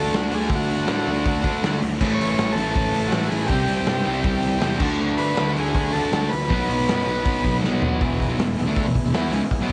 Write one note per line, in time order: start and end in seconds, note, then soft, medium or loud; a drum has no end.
0.00 0.10 D2 loud
0.00 0.28 D3 medium
0.00 0.31 A3 medium
0.00 0.30 D4 loud
0.00 1.76 D4 medium
0.00 1.77 F#4 medium
0.00 0.15 A4 loud
0.00 1.78 A4 medium
0.12 0.28 D2 medium
0.12 0.33 F#4 medium
0.12 snare loud
0.12 open hi-hat medium
0.29 0.48 D2 medium
0.29 0.85 D3 medium
0.29 0.89 A3 loud
0.29 open hi-hat medium
0.34 0.87 D4 loud
0.34 0.50 G#4 loud
0.41 snare soft
0.49 0.66 D2 loud
0.49 kick loud
0.49 open hi-hat medium
0.55 1.26 F#4 medium
0.70 0.85 D2 medium
0.70 open hi-hat medium
0.87 1.04 A2 loud
0.87 1.42 D3 medium
0.87 1.43 A3 medium
0.87 snare loud
0.87 open hi-hat medium
0.91 1.41 D4 medium
1.07 1.23 D2 loud
1.07 open hi-hat medium
1.26 1.42 D2 medium
1.26 1.78 F#4 medium
1.26 kick loud
1.26 open hi-hat medium
1.42 1.60 D2 medium
1.42 1.80 A3 medium
1.42 1.79 D4 medium
1.42 kick medium
1.42 open hi-hat medium
1.46 1.81 D3 medium
1.63 1.79 D2 loud
1.63 snare loud
1.63 open hi-hat medium
1.82 1.98 D2 medium
1.82 open hi-hat medium
1.93 snare soft
2.00 2.16 A1 loud
2.00 2.55 A2 loud
2.00 2.59 E3 medium
2.00 3.47 C#4 medium
2.00 3.48 E4 medium
2.00 3.48 A4 medium
2.00 kick loud
2.00 crash loud
2.05 2.56 A3 loud
2.14 2.55 C#5 loud
2.19 2.35 A1 medium
2.19 open hi-hat medium
2.38 2.55 A1 loud
2.38 snare loud
2.38 open hi-hat medium
2.52 2.72 A1 medium
2.52 3.12 A4 loud
2.58 3.10 A2 medium
2.58 3.13 E3 medium
2.58 3.12 A3 medium
2.58 open hi-hat medium
2.76 2.91 A1 medium
2.76 kick loud
2.76 open hi-hat loud
2.94 3.10 A1 medium
2.94 open hi-hat medium
3.08 3.47 A2 medium
3.08 3.29 F#4 medium
3.08 open hi-hat medium
3.13 3.29 A1 loud
3.13 3.49 E3 loud
3.13 3.50 A3 medium
3.13 snare loud
3.28 3.47 A1 loud
3.28 3.49 G#4 medium
3.28 open hi-hat medium
3.46 3.66 C2 loud
3.46 4.04 C3 medium
3.46 4.78 C4 medium
3.46 4.24 G4 loud
3.46 kick loud
3.46 open hi-hat medium
3.50 4.04 G3 loud
3.50 4.02 C4 loud
3.50 4.79 E4 medium
3.50 4.79 G4 medium
3.68 3.85 C2 medium
3.68 open hi-hat medium
3.86 4.04 G2 medium
3.86 snare loud
3.86 open hi-hat medium
4.03 4.22 C2 medium
4.03 4.57 C3 medium
4.03 4.59 G3 medium
4.03 4.60 C4 medium
4.03 open hi-hat medium
4.24 4.41 C2 medium
4.24 4.77 G4 medium
4.24 kick loud
4.24 open hi-hat medium
4.42 4.60 C2 medium
4.42 open hi-hat medium
4.58 4.78 C3 medium
4.58 4.79 G3 medium
4.58 snare loud
4.58 open hi-hat medium
4.63 4.79 E2 medium
4.63 4.80 C4 loud
4.78 4.97 D2 loud
4.78 5.33 D3 medium
4.78 6.45 A3 medium
4.78 5.36 A3 loud
4.78 6.46 D4 medium
4.78 kick loud
4.78 crash loud
4.82 5.37 D4 loud
4.82 6.47 F#4 loud
5.01 5.17 D2 loud
5.17 5.35 D2 medium
5.17 5.53 B4 loud
5.17 open hi-hat medium
5.35 5.91 D3 medium
5.35 5.92 A3 loud
5.35 snare loud
5.35 open hi-hat medium
5.39 5.55 D2 loud
5.39 5.90 D4 medium
5.56 5.73 D2 medium
5.56 5.93 G#4 loud
5.56 open hi-hat medium
5.75 5.91 D2 medium
5.75 kick loud
5.75 open hi-hat loud
5.91 6.10 D2 medium
5.91 6.30 A3 medium
5.91 6.29 D4 medium
5.91 6.32 A4 loud
5.91 open hi-hat medium
5.96 6.31 D3 medium
6.12 6.28 D2 medium
6.12 snare loud
6.12 open hi-hat medium
6.29 7.58 B4 loud
6.29 open hi-hat medium
6.33 6.48 D2 loud
6.43 snare soft
6.49 6.66 B1 loud
6.49 7.05 B2 medium
6.49 7.05 F#3 medium
6.49 7.97 B3 medium
6.49 7.02 B3 loud
6.49 7.98 D#4 medium
6.49 7.99 F#4 medium
6.49 kick loud
6.49 open hi-hat medium
6.70 6.85 B1 medium
6.70 open hi-hat medium
6.88 7.04 F#2 medium
6.88 snare loud
6.88 open hi-hat medium
7.03 7.23 B1 medium
7.03 7.62 F#3 medium
7.03 7.60 B3 medium
7.08 7.61 B2 medium
7.08 open hi-hat medium
7.25 7.41 B1 medium
7.25 kick loud
7.25 open hi-hat medium
7.44 7.60 B1 loud
7.44 kick medium
7.44 open hi-hat medium
7.62 7.79 B1 medium
7.62 7.99 B2 medium
7.62 8.00 F#3 loud
7.62 snare medium
7.66 8.01 B3 medium
7.82 7.99 B1 medium
7.82 floor tom loud
7.98 8.27 E1 loud
7.98 8.27 E2 medium
7.98 8.28 B2 loud
7.98 8.28 E3 loud
7.98 9.72 B3 medium
7.98 9.72 E4 medium
7.98 9.72 G#4 medium
7.98 kick loud
7.98 open hi-hat medium
8.20 kick medium
8.20 open hi-hat medium
8.28 8.37 B1 loud
8.28 8.38 B2 medium
8.28 8.38 F#3 loud
8.38 8.56 E1 medium
8.38 8.53 E2 medium
8.38 8.53 B2 medium
8.38 snare loud
8.38 open hi-hat medium
8.57 8.66 E1 medium
8.57 8.66 E2 medium
8.57 8.65 B2 medium
8.57 open hi-hat medium
8.66 8.84 D2 medium
8.66 8.84 D3 medium
8.66 8.85 A3 loud
8.66 8.85 D4 loud
8.76 kick loud
8.76 open hi-hat medium
8.85 8.93 E1 medium
8.85 8.95 E2 medium
8.85 8.95 B2 medium
8.95 muted picked electric bass stroke soft
8.95 muted distorted electric guitar stroke medium
8.95 kick medium
8.95 open hi-hat medium
9.03 9.12 E1 medium
9.03 9.14 E2 medium
9.03 9.14 B2 medium
9.12 9.29 E2 loud
9.12 9.32 E3 loud
9.12 9.32 B3 loud
9.12 9.32 E4 loud
9.12 snare loud
9.12 open hi-hat medium
9.29 9.39 C#2 loud
9.29 open hi-hat medium
9.34 9.42 C#3 medium
9.34 9.42 G#3 loud
9.41 muted picked electric bass stroke soft
9.41 muted distorted electric guitar stroke medium
9.51 muted picked electric bass stroke soft
9.51 muted distorted electric guitar stroke medium
9.51 kick loud
9.51 open hi-hat medium
9.59 9.72 B1 loud
9.59 9.72 B2 medium
9.59 9.72 F#3 loud
9.59 9.72 B3 loud
9.69 open hi-hat medium